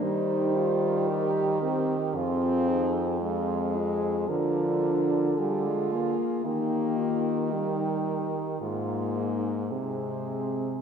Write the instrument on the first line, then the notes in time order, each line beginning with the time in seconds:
french horn
0.01 D#3 G3 D#4 C5
0.56 F4
1.08 G4 A#4
1.62 C4 G4
2.15 F2 C4 F4 G#4
2.69 D#4
3.21 G#3 F4 G#4
3.77 C4
4.29 D3 F3 D4 A#4
5.38 G3 F4 G#4
5.66 G#3
5.93 A#3
6.45 D#3 A#3 D#4 G4
6.97 F4
7.51 G3 D#4 G4
8.60 G#2 A#3 F4 G#4
9.17 D#4
9.71 C3 G#3 C4 G#4